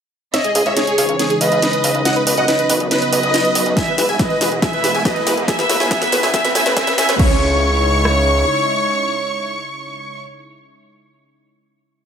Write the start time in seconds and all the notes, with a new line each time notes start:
0.34 C#3 E3 G#3 D#4 C#5 D#5 E5, snare, closed hi-hat, riser
0.44 G#4, closed hi-hat
0.55 C#2 G#4, open hi-hat
0.66 C#2 C#5 E5, closed hi-hat
0.77 G#4 C#5, snare, closed hi-hat
0.87 G#4, closed hi-hat
0.98 C#2 G#4, open hi-hat
1.09 C#2, closed hi-hat
1.19 G#4, snare, closed hi-hat
1.30 G#4, closed hi-hat
1.41 C#2 B4 D#5, open hi-hat
1.52 C#2, closed hi-hat
1.62 snare, closed hi-hat
1.73 closed hi-hat
1.84 C#2 D#5, open hi-hat
1.95 C#2, closed hi-hat
2.05 F#3 B3 D#5 F#5, snare, closed hi-hat
2.16 B4, closed hi-hat
2.27 B1 B4 D#5, open hi-hat
2.37 B1 D#5 F#5, closed hi-hat
2.48 B4, snare, closed hi-hat
2.59 B4, closed hi-hat
2.70 B1 B4, open hi-hat
2.80 B1, closed hi-hat
2.91 B4 D#5, snare, closed hi-hat
3.02 B4, closed hi-hat
3.12 B1 B4 D#5, open hi-hat
3.23 B1, closed hi-hat
3.34 snare, closed hi-hat
3.45 closed hi-hat
3.55 B1, open hi-hat
3.66 B1, closed hi-hat
3.77 B2 E3 G#3 E4 E5 G#5, kick, snare, closed hi-hat
3.87 B4, closed hi-hat
3.98 E1 B4, snare, open hi-hat
4.09 E1 E5 G#5, closed hi-hat
4.19 B4 D#5, kick, snare, closed hi-hat
4.30 B4, closed hi-hat
4.41 E1 B4, snare, open hi-hat
4.52 E1, closed hi-hat
4.62 E5 G#5, kick, snare, closed hi-hat
4.73 B4, closed hi-hat
4.84 E1 B4, snare, open hi-hat
4.94 E1 E5 G#5, closed hi-hat
5.05 B4 D#5, kick, snare, closed hi-hat
5.16 B4, closed hi-hat
5.27 E1 B4, snare, open hi-hat
5.37 E1, closed hi-hat
5.48 C#3 A3 B3 E5 G#5, kick, snare, closed hi-hat
5.59 B4, snare, closed hi-hat
5.70 A1 B4, snare, open hi-hat
5.80 A1 E5 G#5, snare, closed hi-hat
5.91 E5 G#5, kick, snare, closed hi-hat
6.02 B4, snare, closed hi-hat
6.12 A1 B4, snare, open hi-hat
6.23 A1 E5 G#5, snare
6.34 E5 G#5, kick, snare, closed hi-hat
6.45 B4, snare, closed hi-hat
6.55 A1 E5 G#5, snare, open hi-hat
6.66 A1 B4, snare
6.77 E5 G#5, kick, snare, closed hi-hat
6.87 B4, snare, closed hi-hat
6.98 A1 E5 G#5, snare, open hi-hat
7.09 A1 B4, snare, closed hi-hat
7.19 C#2 C#3 G#3 D#4 E4 C#5 C#6, kick, crash
8.05 cross-stick